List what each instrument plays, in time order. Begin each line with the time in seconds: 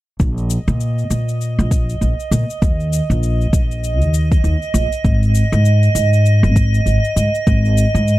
0.20 upright bass A#1, synth texture D#5, kick, shaker
0.38 shaker
0.50 shaker
0.68 upright bass A#2, shaker
0.81 shaker
0.98 shaker
1.10 upright bass A#2, shaker
1.29 shaker
1.41 shaker
1.59 upright bass A#1, shaker
1.71 kick, shaker
1.90 shaker
2.01 upright bass A#1, shaker
2.20 shaker
2.31 upright bass A#2, shaker
2.50 shaker
2.62 upright bass D#2, kick, shaker
2.80 shaker
2.93 shaker
3.10 upright bass A#1, shaker
3.23 shaker
3.41 shaker
3.53 upright bass A#1, kick, shaker
3.71 shaker
3.84 shaker
4.01 upright bass D#2, shaker
4.14 shaker
4.32 kick, shaker
4.44 upright bass D#2, shaker
4.62 shaker
4.74 upright bass A#1, shaker
4.92 shaker
5.04 upright bass G#1, kick, shaker
5.23 shaker
5.35 shaker
5.52 upright bass G#2, shaker
5.65 shaker
5.83 shaker
5.95 upright bass G#2, shaker
6.13 shaker
6.26 shaker
6.43 upright bass G#1, shaker
6.56 kick, shaker
6.74 shaker
6.86 upright bass G#1, shaker
7.05 shaker
7.16 upright bass G#2, shaker
7.35 shaker
7.47 upright bass G#1, kick, shaker
7.65 shaker
7.77 shaker
7.95 upright bass G#2, shaker
8.08 shaker